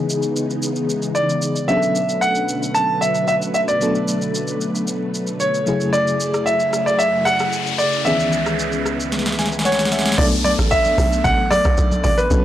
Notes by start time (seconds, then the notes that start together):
Already playing: C#3 E3 G#3 B3 D#4 G#4
0.10 shaker
0.23 shaker
0.36 shaker
0.51 shaker
0.63 shaker
0.76 shaker
0.90 shaker
1.02 shaker
1.15 D5, shaker
1.30 shaker
1.42 shaker
1.56 shaker
1.68 B2 D3 F#3 A3 B3 C#4 D4 G#4 B4 E5, shaker
1.77 A4
1.83 shaker
1.96 shaker
2.09 shaker
2.21 F#5, shaker
2.35 shaker
2.49 shaker
2.63 shaker
2.74 A5, shaker
3.01 E5, shaker
3.15 shaker
3.28 E5, shaker
3.42 shaker
3.54 E5, shaker
3.68 D5, shaker
3.81 F#3 A3 B3 D4 A4, shaker
3.95 shaker
4.08 shaker
4.22 shaker
4.35 shaker
4.48 shaker
4.61 shaker
4.75 shaker
4.88 shaker
5.15 shaker
5.27 shaker
5.40 C#5, shaker
5.54 shaker
5.66 F#2 C#3 F#3 A3 E4 G#4, shaker
5.81 shaker
5.93 D5, noise sweep, shaker
6.08 shaker
6.20 shaker
6.34 cross-stick, shaker
6.46 E5, shaker
6.60 shaker
6.73 cross-stick, shaker
6.86 D5, shaker
6.99 E5, shaker
7.25 F#5, cross-stick, shaker
7.40 cross-stick, shaker
7.53 shaker
7.67 shaker
7.78 D5, shaker
7.93 shaker
8.05 C#2 D#3 G#3 B3 C#4 G#4 B4 E5, shaker
8.12 E3
8.20 shaker
8.33 shaker
8.46 cross-stick, shaker
8.59 shaker
8.72 shaker
8.86 cross-stick, shaker
9.00 shaker
9.12 snare, shaker
9.19 snare
9.26 snare, shaker
9.32 snare
9.39 G#5, snare, shaker
9.46 snare
9.52 shaker
9.59 snare
9.65 C#5 F#5, snare, shaker
9.72 snare
9.79 snare, shaker
9.85 snare
9.92 E5, snare, shaker
9.99 snare
10.06 snare, shaker
10.12 snare
10.18 B1 F#3 A3 B3 D4 A4 D5, kick, crash, downlifter, low conga, shaker
10.32 high conga, shaker
10.44 D5, open hi-hat, high conga, shaker
10.59 A1, cross-stick, shaker
10.71 E5, kick, shaker
10.85 high conga, shaker
10.98 B1, cross-stick, open hi-hat, high conga, low conga, shaker
11.13 shaker
11.24 A1 F#5, kick, low conga, shaker
11.51 D5, cross-stick, open hi-hat, high conga, shaker
11.64 B1, kick, cross-stick, shaker
11.78 B1, kick, shaker
11.92 high conga, shaker
12.04 A1 D5, open hi-hat, high conga, low conga, shaker
12.18 B4, shaker
12.30 B1 F#3 B3 C#4 D4 A4, kick, low conga, shaker